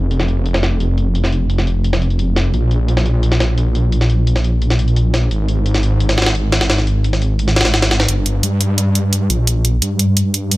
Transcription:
Already playing: detuned saw bass F1
0.11 closed hi-hat
0.20 snare
0.28 closed hi-hat
0.46 closed hi-hat
0.54 snare
0.63 snare, closed hi-hat
0.80 closed hi-hat
0.98 closed hi-hat
1.15 closed hi-hat
1.24 snare
1.32 closed hi-hat
1.50 closed hi-hat
1.58 snare
1.67 closed hi-hat
1.84 closed hi-hat
1.93 snare
2.02 closed hi-hat
2.10 closed hi-hat
2.19 closed hi-hat
2.36 snare, closed hi-hat
2.54 detuned saw bass A#1, closed hi-hat
2.71 closed hi-hat
2.88 closed hi-hat
2.97 snare
3.06 closed hi-hat
3.23 closed hi-hat
3.32 snare
3.40 snare, closed hi-hat
3.58 closed hi-hat
3.75 closed hi-hat
3.92 closed hi-hat
4.01 snare
4.10 closed hi-hat
4.27 closed hi-hat
4.36 snare
4.44 closed hi-hat
4.62 closed hi-hat
4.70 snare
4.79 closed hi-hat
4.88 closed hi-hat
4.96 closed hi-hat
5.14 snare, closed hi-hat
5.31 detuned saw bass G#1, closed hi-hat
5.48 closed hi-hat
5.66 closed hi-hat
5.74 snare
5.83 closed hi-hat
6.00 closed hi-hat
6.09 snare
6.18 snare, closed hi-hat
6.22 snare, closed hi-hat
6.26 snare, closed hi-hat
6.35 closed hi-hat
6.52 snare, closed hi-hat
6.61 snare, closed hi-hat
6.70 snare, closed hi-hat
6.78 snare
6.87 closed hi-hat
7.04 closed hi-hat
7.13 snare
7.22 closed hi-hat
7.39 closed hi-hat
7.48 snare
7.56 snare, closed hi-hat
7.61 snare, closed hi-hat
7.65 snare, closed hi-hat
7.74 snare, closed hi-hat
7.82 snare, closed hi-hat
7.91 snare, closed hi-hat
8.00 snare, closed hi-hat
8.09 detuned saw bass G1, closed hi-hat
8.26 closed hi-hat
8.43 detuned saw bass G2, closed hi-hat
8.61 closed hi-hat
8.78 closed hi-hat
8.95 closed hi-hat
9.13 closed hi-hat
9.30 detuned saw bass A#1, closed hi-hat
9.47 closed hi-hat
9.65 closed hi-hat
9.82 detuned saw bass G2, closed hi-hat
9.99 closed hi-hat
10.17 closed hi-hat
10.34 closed hi-hat
10.51 closed hi-hat

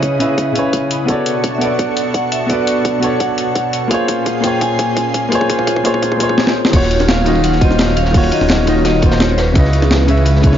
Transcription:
Already playing: grand piano C#3 C#4 E4 B4 D#5 E5, analog synth pad C#3 E4 G#4 B4 D#6, vibraphone C#5
0.03 kick, closed hi-hat
0.19 grand piano C#3 C#4 E4 B4 E5, closed hi-hat
0.38 kick, closed hi-hat
0.52 grand piano C#3 C#4 E4, closed hi-hat
0.57 grand piano B4 C#5
0.73 kick, closed hi-hat
0.91 closed hi-hat
1.05 analog synth pad B2 D4 F#4 A4 C#6, grand piano B3 F#4 A4, kick, closed hi-hat
1.10 grand piano C#5 D5
1.26 closed hi-hat
1.44 kick, closed hi-hat
1.55 grand piano B3, vibraphone E5
1.60 grand piano F#4 A4 B4, vibraphone D5, closed hi-hat
1.65 grand piano D5
1.79 kick, closed hi-hat
1.97 closed hi-hat
2.14 vibraphone F#5, kick, closed hi-hat
2.32 vibraphone E5, closed hi-hat
2.46 grand piano B3 F#4 A4, vibraphone D5, kick, closed hi-hat
2.51 grand piano B4 D5
2.67 closed hi-hat
2.85 kick, closed hi-hat
2.99 grand piano B3 F#4 A4, closed hi-hat
3.04 grand piano C#5 D5
3.20 vibraphone F#5, kick, closed hi-hat
3.38 closed hi-hat
3.55 kick, closed hi-hat
3.73 closed hi-hat
3.88 analog synth pad A#2 C#4 F4 G#4 C6, grand piano A#3 F4 G#4, vibraphone F5, kick, closed hi-hat
3.92 grand piano C5 C#5
4.08 kick, closed hi-hat
4.26 kick, closed hi-hat
4.40 grand piano A#3 F4 G#4, vibraphone G5, kick, closed hi-hat
4.45 grand piano C5 C#5
4.61 vibraphone G#5, kick, closed hi-hat
4.79 kick, closed hi-hat
4.97 kick, closed hi-hat
5.14 kick, closed hi-hat
5.29 grand piano A#3 F4 G#4, kick, closed hi-hat
5.34 grand piano C5 C#5
5.41 kick
5.50 kick, closed hi-hat
5.59 kick
5.67 kick, closed hi-hat
5.76 kick
5.83 grand piano A#3 F4 G#4 C5 C#5, kick, closed hi-hat
5.94 kick
6.02 kick, closed hi-hat
6.12 kick
6.17 grand piano A#3 F4 G#4, kick, closed hi-hat
6.22 grand piano C5 C#5
6.29 kick
6.38 snare
6.47 snare
6.65 snare
6.70 detuned saw bass D#1, grand piano D#3 D#4 F4, analog synth pad F#3 C#4 F5, vibraphone C#5, kick, closed hi-hat, crash, ride
6.75 grand piano F#4 C#5
6.83 snare
6.91 closed hi-hat, ride
6.99 snare, ride
7.08 vibraphone F5, snare, closed hi-hat, ride
7.18 ride
7.25 grand piano D#3 D#4 F4 F#4 D#5, closed hi-hat, ride
7.35 ride
7.44 vibraphone F#5, closed hi-hat, ride
7.52 snare
7.58 grand piano D#3 D#4 F4, vibraphone D#5, kick, closed hi-hat, ride
7.63 grand piano F#4 C5
7.71 snare
7.79 snare, closed hi-hat, ride
7.88 snare
7.97 vibraphone F5, closed hi-hat, ride
8.05 snare
8.11 grand piano D#3 D#4 F4, kick, closed hi-hat, open hi-hat
8.16 grand piano F#4 C#5
8.24 ride
8.31 vibraphone D#5, closed hi-hat, ride
8.41 detuned saw bass D#1, snare
8.48 snare, closed hi-hat, ride
8.66 grand piano D#3 D#4 F4 F#4 D#5, closed hi-hat, ride
8.85 vibraphone D#5, snare, closed hi-hat, ride
8.99 grand piano D#3 D#4 F4, kick, closed hi-hat, ride
9.04 grand piano F#4 C5
9.12 snare, ride
9.20 vibraphone C#5, snare, closed hi-hat
9.29 vibraphone C5, ride
9.38 vibraphone B4, snare, closed hi-hat, ride
9.52 detuned saw bass C#2, grand piano C#3 C#4 E4, analog synth pad E3 B3, kick, closed hi-hat, ride
9.57 grand piano B4 D#5
9.65 snare
9.73 closed hi-hat, ride
9.82 snare, ride
9.91 snare, closed hi-hat, ride
10.01 ride
10.07 grand piano C#3 C#4 E4 B4 E5, closed hi-hat, ride
10.17 ride
10.25 closed hi-hat, ride
10.36 snare
10.40 grand piano C#3 C#4 E4, kick, closed hi-hat, ride
10.45 grand piano B4 C#5
10.53 snare

